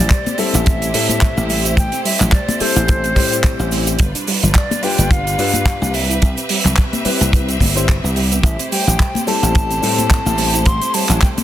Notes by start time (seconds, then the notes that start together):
Already playing: A3 E4 G4 C5 D5
0.10 G3, kick, clap, closed hi-hat, cabasa, shaker
0.26 C4, closed hi-hat, high conga, shaker
0.38 G3 C4 E4 A4 E5, open hi-hat, cabasa
0.53 A1 E4, closed hi-hat, high conga, cabasa, shaker
0.66 E4, kick, closed hi-hat, cabasa, shaker
0.82 C4, closed hi-hat, shaker
0.93 A2 G3 C4 E4 A4, open hi-hat, cabasa
1.09 E4, closed hi-hat, high conga, cabasa, shaker
1.21 G3, kick, clap, closed hi-hat, cabasa, shaker
1.37 A1 C4, high conga, cabasa, shaker
1.50 G3, open hi-hat, cabasa
1.65 E4, closed hi-hat, cabasa, shaker
1.77 G3 G5, kick, closed hi-hat, cabasa, shaker
1.92 C4, closed hi-hat, cabasa, shaker
2.05 G3 E5, open hi-hat, cabasa
2.20 A1 E4, clap, closed hi-hat, low conga, cabasa, shaker
2.32 G3 D5, kick, clap, closed hi-hat, cabasa, shaker
2.48 C4, closed hi-hat, high conga, shaker
2.60 G3 C4 E4 A4 C5, muted slap bass stroke, open hi-hat, cabasa
2.76 A1 E4, closed hi-hat, high conga, cabasa, shaker
2.88 G3 C4 E4 A4, kick, closed hi-hat, cabasa, shaker
3.04 C4, closed hi-hat, shaker
3.15 A2 G3 C4 E4 C5, kick, open hi-hat, cabasa
3.32 E4, closed hi-hat, shaker
3.44 G3, kick, clap, closed hi-hat, cabasa, shaker
3.59 A1 C4, cabasa, shaker
3.71 G3, open hi-hat, cabasa
3.87 E4, closed hi-hat, cabasa, shaker
3.99 G1 G3 D4 F4 B4, kick, closed hi-hat, cabasa, shaker
4.15 D4, closed hi-hat, cabasa, shaker
4.27 G3, open hi-hat, cabasa
4.42 G1 F4, closed hi-hat, low conga, cabasa, shaker
4.55 G3 D5, kick, clap, closed hi-hat, cabasa, shaker
4.71 D4, closed hi-hat, high conga, shaker
4.82 G3 D4 F4 B4 G5, open hi-hat, cabasa
4.98 G1 F4, closed hi-hat, high conga, cabasa, shaker
5.11 F4 F5, kick, closed hi-hat, cabasa, shaker
5.26 D4, closed hi-hat, shaker
5.38 G2 G3 D4 F4 B4, open hi-hat, cabasa
5.53 F4, closed hi-hat, high conga, cabasa, shaker
5.66 G3, kick, clap, closed hi-hat, cabasa, shaker
5.82 C2 D4, high conga, cabasa, shaker
5.94 G3 C4 G4 E5, open hi-hat, cabasa
6.10 E4, closed hi-hat, cabasa, shaker
6.22 C2 G3, kick, closed hi-hat, cabasa, shaker
6.37 C4, closed hi-hat, cabasa, shaker
6.49 G3, open hi-hat, cabasa
6.65 C2 E4, clap, closed hi-hat, low conga, cabasa, shaker
6.77 G3, kick, clap, closed hi-hat, cabasa, shaker
6.93 C4, closed hi-hat, high conga, shaker
7.05 G3 C4 E4 B4, muted slap bass stroke, open hi-hat, cabasa
7.21 C2 E4, closed hi-hat, high conga, cabasa, shaker
7.32 G3 C4 E4 B4, kick, closed hi-hat, cabasa, shaker
7.49 C4, closed hi-hat, cabasa, shaker
7.60 G1 G3, kick, open hi-hat, high conga, cabasa
7.75 G3 C4 E4 C5, closed hi-hat, cabasa, shaker
7.89 E4, kick, clap, closed hi-hat, cabasa, shaker
8.04 C2 B4, cabasa, shaker
8.16 G3, open hi-hat, cabasa
8.32 B3, closed hi-hat, cabasa, shaker
8.43 A1 G3 A3 E4 C5 E5, kick, closed hi-hat, cabasa, shaker
8.59 C4, closed hi-hat, cabasa, shaker
8.72 G3 G5, open hi-hat, cabasa
8.87 A1 E4, closed hi-hat, low conga, cabasa, shaker
9.00 G3, kick, clap, closed hi-hat, cabasa, shaker
9.15 C4, closed hi-hat, high conga, shaker
9.27 G3 C4 E4 A4 A5, open hi-hat, cabasa
9.43 A1 E4, closed hi-hat, high conga, cabasa, shaker
9.55 E4, kick, closed hi-hat, cabasa, shaker
9.71 C4, closed hi-hat, shaker
9.81 A2 G3 C4 E4 A4, open hi-hat, cabasa
9.98 E4, closed hi-hat, high conga, cabasa, shaker
10.11 G3, kick, clap, closed hi-hat, cabasa, shaker
10.26 A1 G4, high conga, cabasa, shaker
10.38 G3, open hi-hat, cabasa
10.54 E4, closed hi-hat, cabasa, shaker
10.66 A1 G3 C6, kick, closed hi-hat, cabasa, shaker
10.82 C4, closed hi-hat, cabasa, shaker
10.94 G3 A5, open hi-hat, cabasa
11.09 A1 E4, clap, closed hi-hat, low conga, cabasa, shaker
11.22 G3 G5, kick, clap, closed hi-hat, cabasa, shaker
11.38 C4, closed hi-hat, high conga, shaker